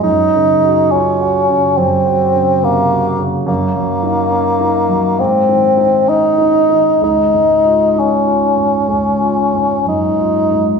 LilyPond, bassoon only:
\new Staff \with { instrumentName = "Bassoon" } { \time 4/4 \key des \major \tempo 4 = 68 ees'4 des'4 c'4 bes8 r8 | bes2 c'4 ees'4 | ees'4 des'2 ees'4 | }